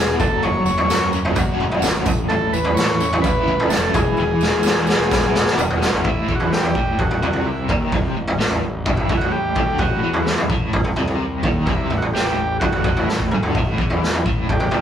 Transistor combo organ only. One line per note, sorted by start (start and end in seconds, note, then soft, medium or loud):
0.00 0.16 G#4 medium
0.20 0.44 A4 medium
0.43 0.64 C#5 loud
0.66 1.09 C#5 medium
2.28 2.54 A4 loud
2.53 2.77 B4 medium
2.75 3.19 C#5 loud
3.22 3.71 B4 loud
3.69 3.94 A4 medium
3.94 5.54 G#4 medium
6.04 6.34 E4 medium
6.35 6.52 F#4 medium
6.53 7.01 G4 medium
6.99 7.47 F#4 medium
7.46 7.68 E4 medium
8.89 9.20 E4 medium
9.17 9.32 F#4 loud
9.32 9.81 G4 loud
9.79 10.28 F#4 loud
10.25 10.48 E4 medium
11.66 11.96 E4 medium
11.98 12.05 F#4 medium
12.14 12.58 G4 loud
12.60 13.09 F#4 loud
13.08 13.18 E4 medium
14.52 14.81 G4 medium